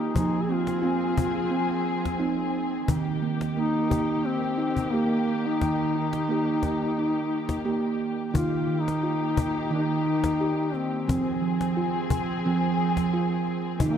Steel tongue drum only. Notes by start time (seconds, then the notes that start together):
Already playing: A#3 G4
0.15 F3
0.49 C4
0.82 C4 F4
1.51 C4
2.19 C4 D#4
2.89 D#3
3.22 A#3
3.57 A#3
3.90 G4
4.58 D#4
4.93 A#3 G4
5.62 D#3
5.95 D#4
6.29 A#3 G4
6.98 D#4
7.65 A#3 G4
8.34 D#3 D#4
8.67 D#3
9.03 F4
9.71 D#3 D#4
10.41 G4
11.07 F3 C4
11.42 F3
11.77 F4
12.45 F3 C4
13.14 F4
13.81 D#3 D#4